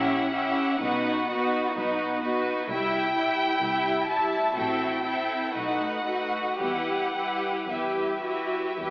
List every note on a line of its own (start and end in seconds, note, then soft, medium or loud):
0.00 0.67 A#1 medium
0.00 0.32 C#4 soft
0.00 0.80 C#4 medium
0.00 0.32 E4 medium
0.00 0.32 G4 soft
0.00 0.32 E5 soft
0.00 2.24 F#5 medium
0.33 0.80 C#4 soft
0.33 0.80 E4 soft
0.33 0.80 G4 soft
0.33 0.80 E5 soft
0.81 1.63 B1 medium
0.81 1.28 B3 soft
0.81 1.29 D#4 soft
0.81 1.28 D#4 soft
0.81 1.28 F#4 soft
0.81 1.28 B4 soft
1.29 1.75 B3 soft
1.29 1.76 D#4 soft
1.29 1.76 F#4 medium
1.29 1.76 F#4 soft
1.29 1.76 B4 soft
1.76 2.57 B1 medium
1.76 2.22 B3 soft
1.76 2.22 D#4 soft
1.76 2.24 D#4 medium
1.76 2.22 F#4 soft
1.76 2.22 B4 soft
2.23 2.69 B3 soft
2.23 2.69 D#4 soft
2.23 2.70 F#4 soft
2.23 2.69 F#4 soft
2.23 2.69 B4 soft
2.70 3.50 C2 medium
2.70 3.16 G3 soft
2.70 4.53 E4 soft
2.70 3.16 E4 soft
2.70 3.16 E4 medium
2.70 3.16 E5 medium
2.70 4.06 G5 medium
3.17 3.63 G3 soft
3.17 3.63 E4 soft
3.17 3.62 E5 soft
3.63 4.43 C2 medium
3.63 4.09 G3 soft
3.63 4.09 E4 soft
3.63 4.09 E5 soft
4.10 4.56 G3 soft
4.10 4.56 E4 soft
4.10 4.56 E5 soft
4.10 4.57 A5 medium
4.56 5.41 A1 soft
4.56 5.05 C4 soft
4.56 5.05 E4 soft
4.56 5.05 F#4 soft
4.56 5.04 A4 soft
4.56 5.04 E5 soft
4.56 5.55 G5 medium
5.05 5.55 C4 soft
5.05 5.55 E4 soft
5.05 5.54 A4 soft
5.05 5.54 E5 soft
5.54 6.45 B1 soft
5.54 6.05 A3 soft
5.54 6.06 D#4 soft
5.54 6.05 D#4 soft
5.54 6.04 F#4 soft
5.54 6.05 B4 soft
5.54 6.60 F#5 medium
6.06 6.59 A3 soft
6.06 6.59 D#4 soft
6.06 6.59 F#4 soft
6.06 6.60 F#4 soft
6.06 6.59 B4 soft
6.60 7.55 E2 soft
6.60 7.15 G3 soft
6.60 7.15 E4 soft
6.60 7.14 G4 soft
6.60 7.58 G4 soft
6.60 7.14 B4 soft
6.60 7.68 F#5 medium
7.15 7.69 G3 soft
7.15 7.69 E4 soft
7.15 7.69 G4 soft
7.15 7.69 B4 soft
7.70 8.64 E2 soft
7.70 8.23 G3 soft
7.70 8.23 E4 soft
7.70 8.24 G4 soft
7.70 8.21 G4 soft
7.70 8.24 B4 soft
7.70 8.90 E5 soft
8.24 8.77 G3 soft
8.24 8.77 E4 soft
8.24 8.79 F#4 soft
8.24 8.77 G4 soft
8.24 8.77 B4 soft
8.78 8.90 E2 soft
8.78 8.90 G3 soft
8.78 8.90 E4 soft
8.78 8.90 G4 soft
8.78 8.90 B4 soft